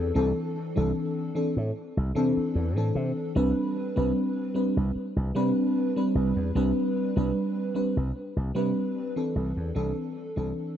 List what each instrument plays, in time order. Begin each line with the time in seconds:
Already playing: slap bass E2, fm electric piano E3 C4 D4 A4
0.14 slap bass C2, fm electric piano E3 C4 D4 A4
0.75 slap bass C2, fm electric piano E3 C4 D4 A4
1.35 fm electric piano E3 C4 D4 A4
1.57 slap bass A2
1.97 slap bass C2
2.15 slap bass C3, fm electric piano E3 C4 D4 A4
2.37 muted slap bass stroke
2.55 slap bass E2
2.76 slap bass A2, fm electric piano E3 C4 D4 A4
2.95 slap bass C3
3.35 slap bass C2, fm electric piano G3 C4 D4 B4
3.96 slap bass C2, fm electric piano G3 C4 D4 B4
4.54 fm electric piano G3 C4 D4 B4
4.77 slap bass C2
4.95 muted slap bass stroke
5.16 slap bass C2
5.35 slap bass C3, fm electric piano G3 C4 D4 B4
5.96 fm electric piano G3 C4 D4 B4
6.15 slap bass C2
6.36 slap bass E2
6.55 slap bass C2, fm electric piano G3 C4 D4 B4
7.16 slap bass C2, fm electric piano G3 C4 D4 B4
7.74 fm electric piano G3 C4 D4 B4
7.97 slap bass C2
8.36 slap bass C2
8.55 slap bass C3, fm electric piano G3 C4 D4 B4
9.16 fm electric piano E3 C4 D4 A4
9.35 slap bass C2
9.57 slap bass E2
9.75 slap bass C2, fm electric piano E3 C4 D4 A4
10.36 slap bass C2, fm electric piano E3 C4 D4 A4